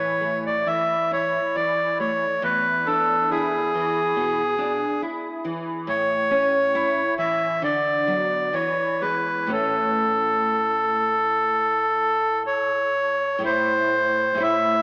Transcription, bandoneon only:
0, 0, Header, 1, 2, 480
1, 0, Start_track
1, 0, Key_signature, 3, "major"
1, 0, Tempo, 884956
1, 1316, Time_signature, 4, 2, 24, 8
1, 1795, Tempo, 863309
1, 4195, Tempo, 921659
1, 4675, Tempo, 983607
1, 7075, Tempo, 950872
1, 7759, End_track
2, 0, Start_track
2, 0, Title_t, "Bandoneon"
2, 0, Program_c, 0, 23
2, 0, Note_on_c, 0, 73, 43
2, 239, Note_off_c, 0, 73, 0
2, 251, Note_on_c, 0, 74, 42
2, 363, Note_on_c, 0, 76, 50
2, 368, Note_off_c, 0, 74, 0
2, 604, Note_off_c, 0, 76, 0
2, 613, Note_on_c, 0, 73, 47
2, 844, Note_on_c, 0, 74, 51
2, 847, Note_off_c, 0, 73, 0
2, 1075, Note_off_c, 0, 74, 0
2, 1082, Note_on_c, 0, 73, 47
2, 1318, Note_off_c, 0, 73, 0
2, 1323, Note_on_c, 0, 71, 52
2, 1553, Note_on_c, 0, 69, 48
2, 1559, Note_off_c, 0, 71, 0
2, 1792, Note_off_c, 0, 69, 0
2, 1794, Note_on_c, 0, 68, 46
2, 2744, Note_off_c, 0, 68, 0
2, 3227, Note_on_c, 0, 73, 61
2, 3927, Note_off_c, 0, 73, 0
2, 3949, Note_on_c, 0, 76, 59
2, 4195, Note_off_c, 0, 76, 0
2, 4200, Note_on_c, 0, 74, 53
2, 4669, Note_on_c, 0, 73, 51
2, 4677, Note_off_c, 0, 74, 0
2, 4904, Note_on_c, 0, 71, 44
2, 4907, Note_off_c, 0, 73, 0
2, 5148, Note_off_c, 0, 71, 0
2, 5150, Note_on_c, 0, 69, 52
2, 6569, Note_off_c, 0, 69, 0
2, 6586, Note_on_c, 0, 73, 49
2, 7054, Note_off_c, 0, 73, 0
2, 7068, Note_on_c, 0, 72, 60
2, 7559, Note_off_c, 0, 72, 0
2, 7559, Note_on_c, 0, 76, 63
2, 7759, Note_off_c, 0, 76, 0
2, 7759, End_track
0, 0, End_of_file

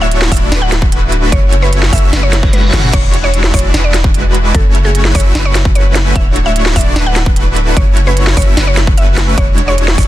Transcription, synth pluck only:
0, 0, Header, 1, 2, 480
1, 0, Start_track
1, 0, Key_signature, 3, "minor"
1, 0, Tempo, 402685
1, 1578, Time_signature, 4, 2, 24, 8
1, 12011, End_track
2, 0, Start_track
2, 0, Title_t, "Synth pluck"
2, 0, Program_c, 0, 84
2, 18, Note_on_c, 0, 76, 93
2, 301, Note_off_c, 0, 76, 0
2, 375, Note_on_c, 0, 76, 92
2, 660, Note_off_c, 0, 76, 0
2, 735, Note_on_c, 0, 78, 90
2, 925, Note_off_c, 0, 78, 0
2, 1576, Note_on_c, 0, 73, 99
2, 1860, Note_off_c, 0, 73, 0
2, 1936, Note_on_c, 0, 71, 92
2, 2221, Note_off_c, 0, 71, 0
2, 2296, Note_on_c, 0, 76, 94
2, 2581, Note_off_c, 0, 76, 0
2, 2657, Note_on_c, 0, 73, 92
2, 2941, Note_off_c, 0, 73, 0
2, 3018, Note_on_c, 0, 71, 94
2, 3396, Note_off_c, 0, 71, 0
2, 3497, Note_on_c, 0, 73, 100
2, 3781, Note_off_c, 0, 73, 0
2, 3860, Note_on_c, 0, 73, 91
2, 4142, Note_off_c, 0, 73, 0
2, 4219, Note_on_c, 0, 73, 95
2, 4502, Note_off_c, 0, 73, 0
2, 4578, Note_on_c, 0, 74, 88
2, 4767, Note_off_c, 0, 74, 0
2, 5421, Note_on_c, 0, 69, 95
2, 5703, Note_off_c, 0, 69, 0
2, 5780, Note_on_c, 0, 68, 92
2, 6063, Note_off_c, 0, 68, 0
2, 6140, Note_on_c, 0, 73, 95
2, 6422, Note_off_c, 0, 73, 0
2, 6501, Note_on_c, 0, 73, 97
2, 6783, Note_off_c, 0, 73, 0
2, 6859, Note_on_c, 0, 73, 95
2, 7237, Note_off_c, 0, 73, 0
2, 7335, Note_on_c, 0, 76, 103
2, 7620, Note_off_c, 0, 76, 0
2, 7698, Note_on_c, 0, 76, 94
2, 7982, Note_off_c, 0, 76, 0
2, 8058, Note_on_c, 0, 76, 97
2, 8341, Note_off_c, 0, 76, 0
2, 8420, Note_on_c, 0, 78, 91
2, 8608, Note_off_c, 0, 78, 0
2, 9260, Note_on_c, 0, 73, 96
2, 9543, Note_off_c, 0, 73, 0
2, 9620, Note_on_c, 0, 71, 90
2, 9902, Note_off_c, 0, 71, 0
2, 9979, Note_on_c, 0, 73, 93
2, 10262, Note_off_c, 0, 73, 0
2, 10338, Note_on_c, 0, 73, 99
2, 10621, Note_off_c, 0, 73, 0
2, 10697, Note_on_c, 0, 76, 94
2, 11076, Note_off_c, 0, 76, 0
2, 11176, Note_on_c, 0, 73, 102
2, 11460, Note_off_c, 0, 73, 0
2, 11538, Note_on_c, 0, 73, 94
2, 11821, Note_off_c, 0, 73, 0
2, 11897, Note_on_c, 0, 73, 94
2, 12011, Note_off_c, 0, 73, 0
2, 12011, End_track
0, 0, End_of_file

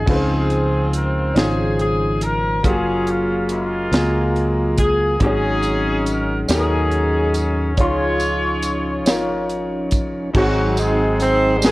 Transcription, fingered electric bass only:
0, 0, Header, 1, 2, 480
1, 0, Start_track
1, 0, Key_signature, -5, "major"
1, 0, Tempo, 855798
1, 42, Time_signature, 6, 3, 24, 8
1, 6571, End_track
2, 0, Start_track
2, 0, Title_t, "Fingered electric bass"
2, 0, Program_c, 0, 33
2, 42, Note_on_c, 0, 37, 74
2, 740, Note_off_c, 0, 37, 0
2, 761, Note_on_c, 0, 32, 83
2, 1482, Note_off_c, 0, 32, 0
2, 1482, Note_on_c, 0, 30, 80
2, 2180, Note_off_c, 0, 30, 0
2, 2197, Note_on_c, 0, 37, 74
2, 2897, Note_off_c, 0, 37, 0
2, 2920, Note_on_c, 0, 32, 81
2, 3619, Note_off_c, 0, 32, 0
2, 3641, Note_on_c, 0, 39, 73
2, 4363, Note_off_c, 0, 39, 0
2, 4363, Note_on_c, 0, 37, 81
2, 5081, Note_off_c, 0, 37, 0
2, 5081, Note_on_c, 0, 32, 77
2, 5779, Note_off_c, 0, 32, 0
2, 5804, Note_on_c, 0, 32, 80
2, 6571, Note_off_c, 0, 32, 0
2, 6571, End_track
0, 0, End_of_file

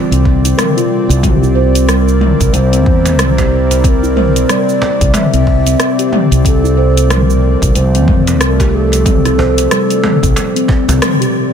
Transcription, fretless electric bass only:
0, 0, Header, 1, 2, 480
1, 0, Start_track
1, 0, Tempo, 652174
1, 907, Time_signature, 4, 2, 24, 8
1, 8486, End_track
2, 0, Start_track
2, 0, Title_t, "Fretless electric bass"
2, 0, Program_c, 0, 35
2, 83, Note_on_c, 0, 36, 80
2, 384, Note_off_c, 0, 36, 0
2, 805, Note_on_c, 0, 36, 97
2, 1709, Note_off_c, 0, 36, 0
2, 1769, Note_on_c, 0, 36, 92
2, 1842, Note_off_c, 0, 36, 0
2, 1862, Note_on_c, 0, 36, 97
2, 2106, Note_off_c, 0, 36, 0
2, 2106, Note_on_c, 0, 40, 98
2, 2343, Note_off_c, 0, 40, 0
2, 2343, Note_on_c, 0, 36, 75
2, 3266, Note_off_c, 0, 36, 0
2, 3688, Note_on_c, 0, 36, 96
2, 3761, Note_off_c, 0, 36, 0
2, 3925, Note_on_c, 0, 36, 85
2, 4225, Note_off_c, 0, 36, 0
2, 4647, Note_on_c, 0, 36, 97
2, 5551, Note_off_c, 0, 36, 0
2, 5608, Note_on_c, 0, 36, 97
2, 5681, Note_off_c, 0, 36, 0
2, 5704, Note_on_c, 0, 36, 97
2, 5944, Note_off_c, 0, 36, 0
2, 5944, Note_on_c, 0, 41, 100
2, 6187, Note_off_c, 0, 41, 0
2, 6187, Note_on_c, 0, 36, 73
2, 7108, Note_off_c, 0, 36, 0
2, 7530, Note_on_c, 0, 36, 98
2, 7602, Note_off_c, 0, 36, 0
2, 8009, Note_on_c, 0, 36, 90
2, 8082, Note_off_c, 0, 36, 0
2, 8486, End_track
0, 0, End_of_file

